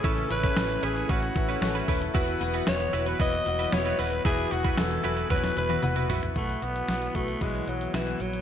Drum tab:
HH |xxxxxxxxxxxxxxox|xxxxxxxxxxxxxxox|xxxxxxxxxxxxxxox|xxxxxxxxxxxxxxxx|
TB |----x-------x---|----x-------x---|----x-----------|----------------|
SD |----o-------o---|----o-------o---|----o---oo------|----o-------o---|
T1 |----------------|----------------|-----------o----|----------------|
T2 |----------------|----------------|------------o---|----------------|
FT |----------------|----------------|--------------oo|----------------|
BD |o--o----o-o---o-|o-------o-------|o--o----o-------|o-----o-o-------|